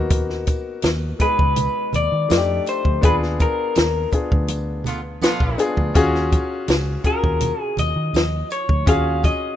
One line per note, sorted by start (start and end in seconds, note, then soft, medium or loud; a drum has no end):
0.00 0.44 D#2 loud
0.00 0.95 A#3 medium
0.00 0.95 B3 medium
0.00 0.96 D#4 medium
0.00 0.96 F#4 loud
0.10 kick loud
0.10 closed hi-hat medium
0.30 snare soft
0.47 kick medium
0.47 closed hi-hat medium
0.47 tambourine soft
0.47 muted conga soft
0.82 1.12 D#2 loud
0.82 snare loud
0.82 closed hi-hat medium
0.82 tambourine medium
0.82 high conga medium
1.19 2.29 G#3 medium
1.19 2.29 B3 medium
1.19 2.29 D#4 medium
1.19 2.31 G#4 medium
1.19 1.95 B4 loud
1.19 kick medium
1.19 closed hi-hat medium
1.39 1.67 C#2 medium
1.39 kick medium
1.56 closed hi-hat loud
1.56 tambourine medium
1.56 muted conga medium
1.56 low conga medium
1.93 2.08 D#2 medium
1.93 2.68 D5 loud
1.93 closed hi-hat medium
1.93 tambourine soft
1.93 low conga medium
2.12 2.26 D#3 loud
2.29 2.58 F2 medium
2.29 2.90 A3 medium
2.29 2.90 D4 medium
2.29 2.91 D#4 medium
2.29 2.37 F4 medium
2.29 snare loud
2.29 closed hi-hat loud
2.29 tambourine medium
2.29 high conga medium
2.37 2.94 G4 medium
2.66 3.02 C5 medium
2.66 closed hi-hat medium
2.66 tambourine medium
2.85 2.99 D2 medium
2.85 kick medium
2.85 high conga medium
3.01 3.45 D#2 loud
3.01 3.93 B3 medium
3.01 3.94 D4 loud
3.01 3.94 F4 medium
3.01 3.95 G#4 loud
3.01 3.15 B4 loud
3.01 kick loud
3.01 closed hi-hat loud
3.01 tambourine soft
3.23 snare soft
3.39 4.10 A#4 medium
3.39 kick loud
3.39 closed hi-hat medium
3.39 tambourine soft
3.39 muted conga soft
3.75 4.05 D#2 medium
3.75 snare loud
3.75 closed hi-hat medium
3.75 tambourine medium
3.75 high conga medium
4.12 5.34 B3 medium
4.12 5.34 D4 medium
4.12 5.34 F4 medium
4.12 5.35 G#4 medium
4.12 kick medium
4.12 closed hi-hat medium
4.12 tambourine soft
4.32 5.19 D2 medium
4.32 kick loud
4.48 closed hi-hat loud
4.48 tambourine medium
4.48 muted conga medium
4.84 5.01 D3 medium
4.84 5.01 B3 medium
4.84 5.01 F4 medium
4.84 closed hi-hat medium
4.84 tambourine medium
4.84 low conga medium
5.22 5.74 D3 medium
5.22 5.74 B3 loud
5.22 5.74 F4 loud
5.22 muted fingered electric bass stroke soft
5.22 snare loud
5.22 closed hi-hat loud
5.22 tambourine medium
5.22 high conga medium
5.40 5.54 A#1 medium
5.40 kick loud
5.58 5.88 B3 medium
5.58 5.88 D4 medium
5.58 5.89 F4 medium
5.58 5.89 G#4 loud
5.58 closed hi-hat medium
5.58 tambourine medium
5.77 5.91 D2 medium
5.77 kick medium
5.77 high conga medium
5.94 6.37 D#2 loud
5.94 6.86 C#4 loud
5.94 6.86 F4 loud
5.94 6.86 F#4 loud
5.94 6.87 G#4 loud
5.94 kick loud
5.94 closed hi-hat medium
6.15 snare soft
6.32 kick loud
6.32 closed hi-hat medium
6.32 tambourine soft
6.32 muted conga soft
6.68 6.96 C#2 loud
6.68 snare loud
6.68 closed hi-hat medium
6.68 tambourine medium
6.68 high conga medium
7.04 8.25 C#4 medium
7.04 8.26 F4 medium
7.04 8.26 F#4 medium
7.04 8.26 G#4 medium
7.04 7.62 A#4 medium
7.04 kick medium
7.04 closed hi-hat medium
7.04 muted conga soft
7.24 7.51 D#2 medium
7.24 kick medium
7.40 closed hi-hat medium
7.40 tambourine soft
7.40 muted conga medium
7.40 low conga medium
7.62 7.79 G#4 medium
7.77 7.92 D#2 loud
7.77 8.47 D#5 loud
7.77 closed hi-hat medium
7.77 tambourine soft
7.77 low conga medium
7.96 8.10 D#3 loud
8.13 8.41 D#2 loud
8.13 snare loud
8.13 closed hi-hat medium
8.13 tambourine medium
8.13 high conga medium
8.50 8.88 C#5 medium
8.50 closed hi-hat medium
8.50 tambourine medium
8.69 8.83 D2 medium
8.69 kick medium
8.69 high conga medium
8.86 9.29 D#2 loud
8.86 9.56 C#4 loud
8.86 9.56 F4 medium
8.86 9.56 F#4 medium
8.86 9.56 G#4 loud
8.86 9.25 F5 loud
8.86 kick loud
8.86 closed hi-hat medium
8.86 tambourine soft
9.23 9.56 D#5 medium
9.23 kick loud
9.23 closed hi-hat medium
9.23 tambourine soft
9.23 muted conga soft